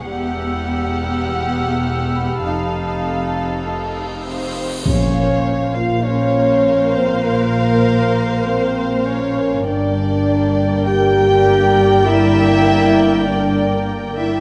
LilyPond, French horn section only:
\new Staff \with { instrumentName = "French horn section" } { \time 4/4 \tempo 4 = 100 <g g'>8 r4. <g g'>8 r4. | <a ees'>8 r4. <a ees'>8 r8 c'4 | des'4. f'8 des'4. c'8 | bes2 c'4 des'4 |
d'2 g'2 | e'2 d'4 r8 e'8 | }